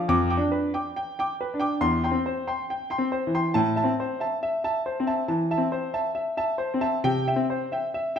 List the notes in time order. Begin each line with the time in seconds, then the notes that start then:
0.09 F2 D6
0.30 G5 D6
0.37 D4
0.52 B4
0.74 G5 D6
0.96 G5
1.19 G5 D6
1.41 B4
1.54 D4
1.60 G5 D6
1.81 E2 C6
2.04 G5 C6
2.11 C4
2.26 C5
2.47 G5 C6
2.70 G5
2.90 G5 C6
2.98 C4
3.12 C5
3.27 E3
3.35 G5 C6
3.54 A2 A5
3.76 E5 A5
3.84 C4
4.00 C5
4.20 E5 A5
4.43 E5
4.64 E5 A5
4.86 C5
5.00 C4
5.07 E5 A5
5.28 E3 A5
5.51 E5 A5
5.58 C4
5.72 C5
5.94 E5 A5
6.15 E5
6.37 E5 A5
6.58 C5
6.74 C4
6.81 E5 A5
7.04 C3 G5
7.28 E5 G5
7.36 C4
7.50 C5
7.72 E5 G5
7.94 E5
8.16 E5